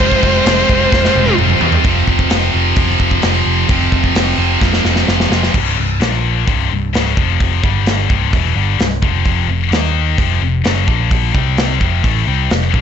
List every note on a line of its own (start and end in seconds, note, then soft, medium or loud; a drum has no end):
0.00 0.15 F1 loud
0.00 0.09 F2 medium
0.00 0.09 C3 medium
0.00 1.34 G#3 medium
0.00 0.07 F4 medium
0.00 1.35 C5 medium
0.00 kick loud
0.00 crash medium
0.07 0.16 F2 medium
0.07 0.17 C3 medium
0.07 0.14 C4 medium
0.07 0.14 F4 medium
0.12 0.22 C4 medium
0.12 0.22 F4 medium
0.12 kick loud
0.17 0.24 F2 medium
0.17 0.25 C3 medium
0.22 0.39 F1 loud
0.22 0.31 F2 medium
0.22 0.32 C3 medium
0.22 0.29 C4 medium
0.22 0.30 F4 medium
0.22 kick medium
0.22 crash medium
0.29 0.39 F2 medium
0.29 0.40 C3 medium
0.29 0.37 C4 medium
0.29 0.38 F4 medium
0.38 0.47 F2 medium
0.38 0.48 C3 medium
0.38 0.45 C4 medium
0.38 0.45 F4 medium
0.45 0.62 F1 loud
0.45 0.54 F2 medium
0.45 0.56 C3 medium
0.45 0.53 C4 medium
0.45 0.53 F4 medium
0.45 snare loud
0.45 crash medium
0.54 0.62 F2 medium
0.54 0.63 C3 medium
0.54 0.61 C4 medium
0.54 0.61 F4 medium
0.61 0.70 F2 medium
0.61 0.71 C3 medium
0.61 0.69 C4 medium
0.61 0.69 F4 medium
0.69 0.85 F1 medium
0.69 0.76 F2 medium
0.69 0.77 C3 medium
0.69 0.74 C4 medium
0.69 0.77 F4 medium
0.69 kick medium
0.69 crash medium
0.75 0.84 F2 medium
0.75 0.85 C3 medium
0.75 0.83 C4 medium
0.75 0.84 F4 medium
0.84 0.92 F2 medium
0.84 0.93 C3 medium
0.84 0.91 C4 medium
0.84 0.92 F4 medium
0.91 1.08 F1 medium
0.91 1.00 F2 medium
0.91 1.01 C3 medium
0.91 0.99 C4 medium
0.91 0.99 F4 medium
0.91 kick loud
0.91 snare medium
1.00 1.07 F2 medium
1.00 1.09 C3 medium
1.00 1.07 C4 medium
1.00 1.07 F4 medium
1.05 1.15 F2 medium
1.05 1.16 C3 medium
1.05 1.14 C4 medium
1.05 1.14 F4 medium
1.05 snare medium
1.14 1.31 F1 medium
1.14 1.23 F2 medium
1.14 1.24 C3 medium
1.14 1.22 C4 medium
1.14 1.22 F4 medium
1.14 high tom medium
1.23 1.29 F2 medium
1.23 1.32 C3 medium
1.23 1.30 C4 medium
1.23 1.30 F4 medium
1.27 1.37 F2 medium
1.27 1.37 C4 medium
1.27 1.38 F4 medium
1.27 high tom medium
1.32 1.40 C3 medium
1.37 1.54 F1 medium
1.37 1.45 F2 medium
1.37 1.47 C3 medium
1.37 1.45 C4 medium
1.37 1.46 F4 medium
1.37 mid tom medium
1.45 1.53 F2 medium
1.45 1.55 C3 medium
1.45 1.52 C4 medium
1.45 1.54 F4 medium
1.50 1.60 F2 medium
1.50 1.60 C4 medium
1.50 mid tom medium
1.54 1.63 C3 medium
1.54 1.61 F4 medium
1.61 1.77 E2 loud
1.61 1.68 F2 medium
1.61 1.70 C3 medium
1.61 1.68 C4 medium
1.61 1.69 F4 medium
1.61 floor tom loud
1.69 1.76 F2 medium
1.69 1.78 C3 medium
1.69 1.76 C4 medium
1.69 1.75 F4 medium
1.69 floor tom medium
1.76 1.84 F2 medium
1.76 1.86 C3 medium
1.76 1.84 C4 medium
1.76 1.83 F4 medium
1.83 2.02 F1 medium
1.83 2.76 F2 loud
1.83 2.56 F2 medium
1.83 2.76 C3 loud
1.83 2.53 C3 medium
1.83 2.79 F3 loud
1.83 kick loud
1.83 open hi-hat medium
1.88 2.53 F3 loud
2.07 2.25 F1 loud
2.07 kick medium
2.19 kick medium
2.30 2.48 F1 medium
2.30 snare loud
2.30 open hi-hat medium
2.53 2.72 F1 medium
2.53 3.68 F2 medium
2.53 3.68 C3 medium
2.53 3.68 F3 medium
2.76 2.94 F1 medium
2.76 3.66 F2 medium
2.76 3.68 C3 medium
2.76 3.69 F3 medium
2.76 kick loud
2.76 open hi-hat medium
3.00 3.17 F1 medium
3.00 kick medium
3.11 kick medium
3.22 3.41 F1 medium
3.22 snare loud
3.22 open hi-hat medium
3.46 3.63 F1 medium
3.68 3.87 F1 loud
3.68 4.59 F2 medium
3.68 4.37 F2 medium
3.68 4.61 C3 loud
3.68 4.38 C3 medium
3.68 4.61 F3 loud
3.68 kick loud
3.68 open hi-hat medium
3.72 4.36 F3 medium
3.92 4.10 F1 loud
3.92 kick medium
4.04 kick medium
4.15 4.33 F1 medium
4.15 snare loud
4.15 open hi-hat medium
4.37 4.56 F1 medium
4.37 5.54 F2 medium
4.37 5.53 C3 medium
4.37 5.52 F3 medium
4.60 4.79 F1 medium
4.60 5.52 F2 medium
4.60 5.53 C3 medium
4.60 5.54 F3 medium
4.60 kick loud
4.60 snare medium
4.73 snare medium
4.85 5.02 F1 medium
4.85 snare medium
4.96 snare medium
5.08 5.26 F1 medium
5.08 snare medium
5.20 snare medium
5.31 5.48 F1 medium
5.31 snare medium
5.43 snare medium
5.53 5.76 C1 medium
5.53 5.76 C2 medium
5.53 5.77 G2 medium
5.53 5.77 C3 medium
5.53 kick medium
5.53 crash medium
5.77 5.99 C1 medium
5.77 5.96 C2 medium
5.77 5.96 G2 medium
6.00 6.44 A#1 medium
6.00 6.46 A#2 medium
6.00 6.46 F3 medium
6.00 6.46 A#3 medium
6.00 snare loud
6.00 open hi-hat medium
6.46 6.69 C2 medium
6.46 6.69 G2 medium
6.46 6.70 C3 medium
6.46 kick loud
6.46 open hi-hat soft
6.70 6.92 C1 medium
6.70 6.89 C2 medium
6.70 6.89 G2 medium
6.93 7.15 C#1 medium
6.93 7.16 C#2 medium
6.93 7.16 G#2 medium
6.93 7.17 C#3 medium
6.93 snare loud
6.93 open hi-hat soft
7.16 7.60 F1 medium
7.16 7.62 F2 medium
7.16 7.63 C3 medium
7.16 7.63 F3 medium
7.16 kick medium
7.40 kick medium
7.40 open hi-hat soft
7.63 8.07 G1 medium
7.63 8.08 G2 medium
7.63 8.09 D3 medium
7.63 8.09 G3 medium
7.63 kick medium
7.86 snare loud
7.86 open hi-hat soft
8.09 8.31 C1 medium
8.09 8.32 C2 medium
8.09 8.32 G2 medium
8.09 8.32 C3 loud
8.09 kick medium
8.32 8.55 E1 medium
8.32 8.55 E2 medium
8.32 8.55 B2 medium
8.32 8.56 E3 medium
8.32 kick loud
8.32 open hi-hat soft
8.56 8.78 G1 medium
8.56 8.78 G2 medium
8.56 8.79 D3 medium
8.56 8.79 G3 medium
8.79 9.01 C1 medium
8.79 8.98 C2 medium
8.79 8.98 G2 medium
8.79 snare medium
8.79 open hi-hat soft
9.02 9.24 F1 medium
9.02 9.23 F2 medium
9.02 9.24 C3 medium
9.02 9.24 F3 loud
9.02 kick loud
9.24 9.47 F1 medium
9.24 9.47 F2 medium
9.24 9.47 C3 loud
9.24 9.48 F3 loud
9.24 kick medium
9.24 open hi-hat soft
9.48 9.70 F1 medium
9.48 9.67 F2 medium
9.48 9.67 C3 medium
9.71 10.15 D#2 medium
9.71 10.18 D#3 medium
9.71 10.18 A#3 medium
9.71 10.18 D#4 loud
9.71 snare loud
9.71 open hi-hat soft
10.18 10.40 F1 medium
10.18 10.40 F2 medium
10.18 10.41 C3 medium
10.18 10.42 F3 medium
10.18 kick loud
10.18 open hi-hat medium
10.41 10.63 F1 medium
10.41 10.60 F2 medium
10.41 10.61 C3 medium
10.64 10.87 F#1 medium
10.64 10.86 F#2 medium
10.64 10.87 C#3 loud
10.64 10.88 F#3 loud
10.64 snare medium
10.64 open hi-hat soft
10.86 11.31 A#1 medium
10.86 11.33 A#2 medium
10.86 11.33 F3 medium
10.86 11.33 A#3 medium
10.86 kick loud
11.11 kick loud
11.11 open hi-hat soft
11.33 11.78 C2 medium
11.33 11.79 C3 medium
11.33 11.80 G3 medium
11.33 11.80 C4 medium
11.33 kick medium
11.57 snare loud
11.57 open hi-hat soft
11.79 12.03 F1 medium
11.79 12.03 F2 medium
11.79 12.03 C3 medium
11.79 12.04 F3 medium
11.79 kick medium
12.03 12.26 A1 medium
12.03 12.26 A2 medium
12.03 12.26 E3 medium
12.03 12.27 A3 medium
12.03 kick loud
12.03 open hi-hat soft
12.26 12.49 C2 medium
12.26 12.50 C3 medium
12.26 12.50 G3 medium
12.26 12.50 C4 medium
12.50 12.72 F1 medium
12.50 12.70 F2 medium
12.50 12.70 C3 medium
12.50 snare loud
12.50 open hi-hat soft
12.74 12.81 A#1 medium
12.74 12.81 A#2 medium
12.74 12.81 F3 medium
12.74 12.81 A#3 medium
12.74 kick medium